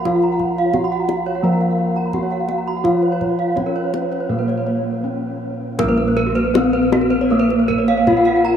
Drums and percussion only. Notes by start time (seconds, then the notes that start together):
0.05 kendang high, kendang low
0.22 kendang slap
0.40 kendang low
0.73 kendang slap, kendang high, kendang low
1.09 kendang slap, kendang high
1.26 kendang slap
1.61 kendang slap
1.96 kendang slap
2.13 kendang slap, kendang low
2.31 kendang slap
2.49 kendang high
2.85 kendang low
3.03 kendang slap
3.21 kendang slap, kendang low
3.57 kendang slap, kendang high, kendang low
3.94 kendang slap, kendang high
4.12 kendang slap
4.49 kendang slap
5.79 kendang low
6.17 kendang slap
6.36 kendang slap
6.55 kendang high
6.92 kendang slap, kendang high
7.50 kendang slap
7.70 kendang low
7.88 kendang slap
8.07 kendang slap, kendang low
8.46 kendang slap